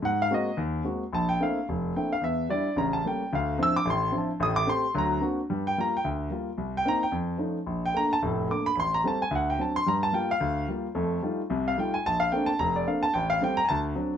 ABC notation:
X:1
M:4/4
L:1/8
Q:"Swing" 1/4=220
K:Dm
V:1 name="Grand piano"
^f =f ^d2 z4 | a g f2 z2 g f | e2 d2 b a g2 | f2 e' d' c'2 a2 |
_e' d' c'2 b2 z2 | [K:Gm] z g b g z4 | z g b g z4 | z g b a z2 d' =b |
[=bc'] _b a _a ^f g =a c' | b a g f3 z2 | z4 z f g _a | a f g a b d f a |
g f g b [_a=a] z3 |]
V:2 name="Grand piano"
^G,,2 [^G,^A,^B,^F] z ^D,,2 [G,A,B,F] z | B,,,2 [A,B,CDE] z F,,,2 [A,B,CDE] z | E,,2 [G,DE] z [A,,,^C,]2 [G,A,B,^C] z | [D,,D,]2 [F,CDE] z [A,,,A,,]2 [F,CDE] z |
[A,,,A,,]2 [A,CG] z [D,,^F,]2 [B,CD^F] z | [K:Gm] [G,,G,]2 [G,B,F] z D,,2 [G,B,F] z | C,,2 [B,CE] z F,,2 [F,A,^CE] z | B,,,2 [A,B,D] z [F,,,A,,]2 [A,B,D] z |
A,,,2 [G,A,C] z D,,2 [^F,CD] z | [G,,G,]2 [G,B,F] z D,,2 [G,B,F] z | [F,,A,]2 [G,A,EF] z [C,,C,]2 [G,A,EF] z | B,,,2 [A,B,CD] z F,,,2 [A,B,CD] z |
A,,,2 [G,A,C] z D,,2 [^F,CD] z |]